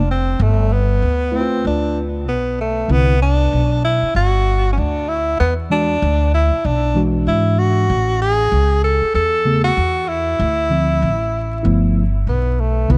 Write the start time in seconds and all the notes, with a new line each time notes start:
Already playing: F1
0.11 C4
0.40 G1 A3
0.72 B3
1.02 D2
1.32 A3 C4 E4 B4
1.41 F4
1.65 D2 D4
2.27 B1 B3
2.61 A3
2.88 C2 D3 B3 C4 E4
3.22 D4
3.53 B1
3.84 E4
4.02 muted upright bass stroke
4.15 G1 F#4
4.72 C#4
4.78 D2 D4
5.08 E4
5.40 E2 B3
5.70 E3 G#3 D4 F#4
6.02 D2
6.34 E4
6.52 muted upright bass stroke
6.65 B1 D4
6.94 E3 G#3 D4 F#4
7.27 G#2 E4
7.59 F#4
7.90 A1
8.21 G#4
8.52 C#2
8.84 A4
9.02 muted upright bass stroke
9.14 E2 A4
9.45 C#3 A3 B3 G#4
9.64 F#4
9.77 E2
10.08 E4
10.39 D2
10.70 D3 F3 C4 E4
11.02 A1
11.63 G1 F3 A3 B3 E4
12.27 B1 B3
12.60 A3
12.88 C2 C3 D3 B3 E4